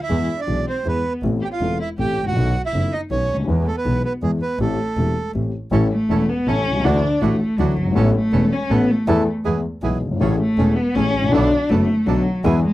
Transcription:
0.01 E4 E5
0.09 E2 E3 G#3 B3 G#4
0.40 D4 D5
0.47 B1 B2 E3 G#3 B3 G#4
0.67 C4 C5
0.85 E2 E3 G#3 B3 G#4 B4
1.23 A1 A2 E3 A3 C4 A4
1.42 G4 G5
1.51 F4 F5
1.61 E1 E2 E3 A3 C4 A4
1.80 E4 E5
1.98 A1 A2 E3 A3 C4 G4 A4 G5
2.17 A1
2.23 G#1
2.27 A1 F#4 F#5
2.31 A#1
2.36 B1 B2 D#3 A3 B3 F#4
2.65 E4 E5
2.73 F#1 F#2 D#3 A3 B3 F#4
2.92 D#4 D#5
3.10 B1 B2 D#3 A3 B3 C#4 F#4 C#5
3.29 D2
3.35 C#2
3.40 D2
3.44 D#2 E2 E3 G#3 B3
3.48 G#4
3.66 A3 A4
3.75 B3 B4
3.85 B1 B2 E3 G#3 B3 G#4
4.05 B3 B4
4.22 E2 E3 G#3 B3 G#4
4.42 B3 B4
4.59 A1 A2 E3 A3 C4 G4 A4
4.97 E1 E2 E3 A3 C4 G4
5.35 A1 A2 E3 A3 C4 G4
5.71 A1 A2 E3 A3 C#4 E4 A4
5.92 A3
6.09 E1 E2 E3 A3 C#4 E4 A4
6.29 B3
6.47 A1 A2 E3 A3 C#4 E4 A4
6.66 C2
6.71 B1 C2
6.80 C#2 D4
6.84 D2 D3 E3 A3 D4 E4 F#4
7.21 A1 A2 E3 A3 D4 E4 F#4
7.59 D2 D3 E3 F#3 A3 D4 E4 F#4
7.77 G1
7.82 F#1
7.87 G1
7.91 G#1 E3 B3 C#4
7.95 A1 A2 B3 A4
8.15 A3
8.32 E1 E2 E3 B3 C#4 A4
8.52 C#4
8.69 A1 A2 E3 B3 C#4 A4
8.91 A3
9.07 E2 E3 A3 B3 E4 A4
9.45 E2 E3 G#3 B3 E4 G#4
9.83 B1 B2 E3 G#3 B3 E4 G#4
10.02 G1
10.06 F#1
10.12 G1
10.16 G#1 A3
10.20 A1 A2 E3 A3 C#4 G#4
10.40 A3
10.58 E1 E2 E3 A3 C#4 G#4
10.75 B3
10.95 A1 A2 E3 A3 C#4 G#4
11.15 G#1 A1
11.24 A1
11.28 A#1 B1 D3 D4
11.32 B1 B2 A3 B3 D4 F#4 A4
11.70 F#1 F#2 D3 A3 B3 D4 F#4 A4
12.06 B1 B2 D3 F#3 A3 B3 D4 F#4 A4
12.44 E2 E3 G#3 B3 E4 G#4
12.62 G#3

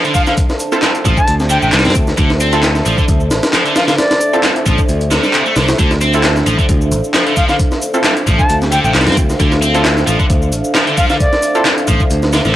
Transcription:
Already playing: D4 A4 C5 E5 A5
0.04 D3, closed hi-hat, shaker
0.14 F3 F5, kick, closed hi-hat, shaker
0.27 D3 F5, snare, shaker
0.37 kick, closed hi-hat, shaker
0.49 snare, shaker
0.59 closed hi-hat, shaker
0.72 C4 E4 F4 A4, shaker
0.82 G3, snare, clap, closed hi-hat, shaker
0.95 closed hi-hat, shaker
1.05 A1 F3, kick, closed hi-hat, shaker
1.17 A5, kick, shaker
1.27 D2, closed hi-hat, shaker
1.40 snare, shaker
1.50 D3 G5, closed hi-hat, shaker
1.62 A1 C3 G5, shaker
1.72 C2 G3, snare, clap, closed hi-hat, shaker
1.79 snare, closed hi-hat
1.85 G2 C4, snare, closed hi-hat, shaker
1.90 snare, closed hi-hat
1.95 D2, kick, closed hi-hat, shaker
2.07 snare, shaker
2.17 D2 D3, kick, closed hi-hat, shaker
2.30 snare, shaker
2.40 C4, closed hi-hat, shaker
2.52 D3 C4 E4 F4 A4, closed hi-hat, shaker
2.63 snare, clap, closed hi-hat, shaker
2.75 snare, shaker
2.86 A1 F3, closed hi-hat, shaker
2.98 D3, kick, shaker
3.08 D2, kick, closed hi-hat, shaker
3.20 shaker
3.31 A1, snare, closed hi-hat, shaker
3.43 snare, closed hi-hat, shaker
3.53 F3, snare, clap, closed hi-hat, shaker
3.65 D3, closed hi-hat, shaker
3.76 F3 F5, snare, closed hi-hat, shaker
3.87 D3 F5, snare, closed hi-hat, shaker
3.98 D5, snare, closed hi-hat, shaker
4.11 snare, closed hi-hat, shaker
4.21 closed hi-hat, shaker
4.33 C4 E4 F4 A4, shaker
4.43 G3, snare, clap, closed hi-hat, shaker
4.56 closed hi-hat, shaker
4.66 A1 F3, kick, closed hi-hat, shaker
4.78 kick, shaker
4.89 D2, closed hi-hat, shaker
5.01 closed hi-hat, shaker
5.11 C3, snare, closed hi-hat, shaker
5.23 G3, snare, shaker
5.34 C3, clap, closed hi-hat, shaker
5.46 A3, shaker
5.56 C2 D3, snare, closed hi-hat, shaker
5.68 snare, closed hi-hat, shaker
5.79 D2 D3 F5, kick, closed hi-hat, shaker
5.91 snare, shaker
6.01 C4, closed hi-hat, shaker
6.13 D3 C4 E4 F4 A4, closed hi-hat, shaker
6.24 snare, clap, closed hi-hat, shaker
6.36 snare, shaker
6.46 A1 F3, closed hi-hat, shaker
6.59 D3, kick, shaker
6.69 D2, kick, closed hi-hat, shaker
6.81 shaker
6.91 A1, closed hi-hat, shaker
7.04 shaker
7.14 F3, snare, clap, closed hi-hat, shaker
7.26 D3, closed hi-hat, shaker
7.36 F3 F5, kick, closed hi-hat, shaker
7.49 D3 F5, snare, shaker
7.59 kick, closed hi-hat, shaker
7.71 snare, shaker
7.82 closed hi-hat, shaker
7.94 C4 E4 F4 A4, shaker
8.04 G3, snare, clap, closed hi-hat, shaker
8.17 closed hi-hat, shaker
8.27 A1 F3, kick, closed hi-hat, shaker
8.39 A5, kick, shaker
8.49 D2, closed hi-hat, shaker
8.62 snare, shaker
8.72 D3 G5, closed hi-hat, shaker
8.84 A1 C3 G5, shaker
8.94 C2 G3, snare, clap, closed hi-hat, shaker
9.01 snare, closed hi-hat
9.06 G2 C4, snare, closed hi-hat, shaker
9.12 snare, closed hi-hat
9.17 D2, kick, closed hi-hat, shaker
9.30 snare, shaker
9.40 D2 D3, kick, closed hi-hat, shaker
9.52 snare, shaker
9.62 C4, closed hi-hat, shaker
9.74 D3 C4 E4 F4 A4, closed hi-hat, shaker
9.85 snare, clap, closed hi-hat, shaker
9.97 snare, shaker
10.07 A1 F3, closed hi-hat, shaker
10.19 D3, kick, shaker
10.30 D2, kick, closed hi-hat, shaker
10.42 shaker
10.52 A1, closed hi-hat, shaker
10.64 shaker
10.75 F3, snare, clap, closed hi-hat, shaker
10.87 D3, closed hi-hat, shaker
10.97 F3 F5, kick, closed hi-hat, shaker
11.10 D3 F5, snare, shaker
11.20 D5, kick, closed hi-hat, shaker
11.33 snare, shaker
11.42 closed hi-hat, shaker
11.55 C4 E4 F4 A4, shaker
11.65 G3, snare, clap, closed hi-hat, shaker
11.78 closed hi-hat, shaker
11.87 A1 F3, kick, closed hi-hat, shaker
12.00 kick, shaker
12.10 D2, closed hi-hat, shaker
12.22 snare, shaker
12.33 D3, snare, closed hi-hat, shaker
12.45 A1 D3, snare, shaker

